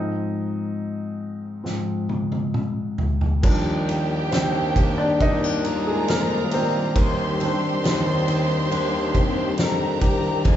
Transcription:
0.00 1.62 G#2 soft
0.00 1.62 F3 soft
0.00 1.63 C4 soft
0.00 2.95 D#4 medium
0.00 2.94 D#5 medium
1.64 2.04 G#2 soft
1.64 2.04 F3 soft
1.64 2.05 C4 soft
1.64 snare soft
2.09 high tom medium
2.32 high tom medium
2.54 mid tom medium
2.98 floor tom medium
3.21 floor tom medium
3.43 4.28 D#2 medium
3.43 10.56 D#3 medium
3.43 6.94 D#3 medium
3.43 4.72 F3 soft
3.43 10.41 G3 medium
3.43 4.72 G3 soft
3.43 6.92 A#3 medium
3.43 4.72 D4 medium
3.43 5.60 G4 medium
3.43 5.19 G4 medium
3.43 5.60 G5 medium
3.43 kick loud
3.43 crash medium
3.89 4.76 A#3 medium
3.89 ride medium
4.31 5.16 D#2 medium
4.31 4.95 C4 medium
4.31 5.22 D4 medium
4.31 5.00 C5 medium
4.31 snare loud
4.31 ride medium
4.76 5.65 A#3 medium
4.76 kick medium
4.76 ride medium
4.98 5.04 D4 medium
4.98 5.03 D5 medium
5.21 6.04 D#2 medium
5.21 5.44 C4 medium
5.21 5.83 D#4 medium
5.21 6.94 F4 medium
5.21 5.89 D#5 medium
5.21 kick medium
5.21 ride medium
5.44 6.08 D4 soft
5.65 7.05 A#3 medium
5.65 6.93 A#4 medium
5.65 6.93 A#5 medium
5.65 ride medium
5.87 6.07 G#3 medium
5.87 6.07 G#4 medium
6.07 6.53 F2 medium
6.07 6.50 A#3 medium
6.07 7.43 D4 medium
6.07 6.49 A#4 medium
6.07 snare loud
6.07 ride medium
6.51 6.92 A#2 medium
6.51 7.39 C4 medium
6.51 10.01 G4 medium
6.51 9.12 C5 medium
6.51 ride medium
6.94 7.52 D#2 loud
6.94 10.48 D#3 medium
6.94 10.56 C4 medium
6.94 10.41 G4 medium
6.94 9.54 C5 medium
6.94 9.54 C6 medium
6.94 kick loud
6.94 ride medium
7.40 8.68 D#3 medium
7.40 8.28 C4 medium
7.40 8.68 C4 soft
7.40 8.68 D4 medium
7.40 ride medium
7.83 8.67 D#2 loud
7.83 8.70 D4 medium
7.83 snare loud
7.83 ride medium
8.28 9.15 C4 medium
8.28 ride medium
8.70 9.54 D#2 loud
8.70 9.57 D4 medium
8.70 ride medium
9.15 10.56 C4 medium
9.15 kick medium
9.15 ride medium
9.57 9.98 F2 medium
9.57 10.54 D4 medium
9.57 10.44 A#4 medium
9.57 10.44 A#5 medium
9.57 snare loud
9.57 ride medium
10.01 10.42 C2 medium
10.01 10.54 G4 medium
10.01 kick medium
10.01 ride medium
10.44 10.56 F2 medium
10.44 10.56 F2 loud
10.44 10.56 F3 medium
10.44 10.56 F4 medium
10.44 10.56 G#4 medium
10.44 10.56 G#5 medium
10.44 kick loud
10.44 ride medium

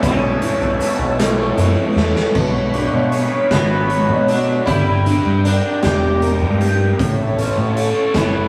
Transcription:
0.00 0.37 B1 loud
0.00 0.60 B2 medium
0.00 1.96 B2 medium
0.00 0.41 E3 medium
0.00 1.24 F#3 medium
0.00 1.18 A3 medium
0.00 1.86 B3 medium
0.00 2.30 C#5 medium
0.00 2.30 E5 medium
0.00 2.30 A5 medium
0.00 kick loud
0.00 closed hi-hat medium
0.00 maracas medium
0.05 1.05 C#4 medium
0.42 0.78 E3 medium
0.42 closed hi-hat medium
0.60 0.78 B1 medium
0.60 7.75 B2 medium
0.60 maracas soft
0.79 1.58 E3 medium
0.79 closed hi-hat medium
0.79 maracas medium
0.99 1.50 B1 medium
1.05 1.54 B3 medium
1.19 1.96 A3 medium
1.19 snare loud
1.19 closed hi-hat medium
1.19 maracas soft
1.25 8.02 F#3 medium
1.58 1.74 F#2 medium
1.58 2.36 E3 medium
1.58 closed hi-hat medium
1.58 maracas medium
1.86 7.55 B3 medium
1.96 2.13 E2 medium
1.96 2.36 A3 medium
1.96 snare medium
2.16 snare medium
2.35 2.86 B1 medium
2.35 4.29 B2 medium
2.35 4.65 C#5 medium
2.35 4.65 B5 medium
2.35 kick medium
2.35 crash medium
2.74 4.68 D4 medium
2.74 closed hi-hat soft
2.94 3.27 B2 medium
3.12 3.88 C#5 medium
3.12 closed hi-hat soft
3.50 4.11 G#1 medium
3.50 4.29 B3 medium
3.50 4.27 F#4 medium
3.50 kick medium
3.50 snare loud
3.50 closed hi-hat medium
3.89 4.67 C#5 medium
3.89 closed hi-hat medium
4.09 4.60 B2 medium
4.28 4.65 D4 medium
4.28 4.67 F#4 medium
4.28 closed hi-hat medium
4.66 5.18 G1 medium
4.66 6.61 G3 medium
4.66 5.44 E4 medium
4.66 6.98 G5 medium
4.66 6.97 A#5 medium
4.66 kick medium
4.66 closed hi-hat medium
5.06 7.00 D4 medium
5.06 closed hi-hat medium
5.26 5.59 G2 medium
5.45 5.81 D4 medium
5.45 6.22 A#4 medium
5.45 closed hi-hat medium
5.83 6.44 E1 medium
5.83 6.60 G4 medium
5.83 6.67 G4 medium
5.83 kick medium
5.83 snare loud
5.83 closed hi-hat medium
6.22 7.00 A#4 medium
6.22 closed hi-hat medium
6.42 6.92 G2 medium
6.61 7.00 G4 medium
6.61 closed hi-hat medium
6.99 7.50 A1 medium
6.99 8.48 A2 medium
6.99 8.48 C#5 medium
6.99 8.48 E5 medium
6.99 8.48 A5 medium
6.99 kick medium
6.99 closed hi-hat medium
7.38 8.48 C#4 medium
7.38 closed hi-hat medium
7.57 7.91 A2 medium
7.77 8.48 A4 medium
7.77 closed hi-hat soft
8.14 8.48 F#1 medium
8.14 8.48 B3 medium
8.14 8.48 E4 medium
8.14 kick medium
8.14 snare loud
8.14 closed hi-hat medium

